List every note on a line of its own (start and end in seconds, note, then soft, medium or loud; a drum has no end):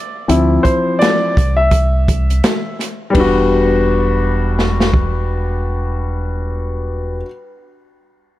0.28 0.57 D2 loud
0.28 1.32 F3 soft
0.28 1.32 C4 soft
0.28 1.32 E4 medium
0.28 closed hi-hat medium
0.63 1.01 C5 medium
0.63 kick medium
0.63 closed hi-hat medium
0.99 1.53 D5 medium
0.99 snare loud
0.99 closed hi-hat medium
1.37 2.40 C2 medium
1.37 kick medium
1.37 closed hi-hat medium
1.57 2.74 E5 medium
1.71 kick medium
1.71 closed hi-hat medium
2.08 kick medium
2.08 closed hi-hat medium
2.30 closed hi-hat soft
2.44 snare medium
2.44 closed hi-hat medium
2.79 snare soft
2.79 closed hi-hat medium
3.10 7.17 G3 medium
3.10 7.20 B3 medium
3.15 7.22 E1 medium
3.15 7.23 D4 medium
3.15 kick medium
3.15 ride medium
3.20 7.27 F#4 medium
4.59 snare soft
4.80 snare medium
4.94 kick medium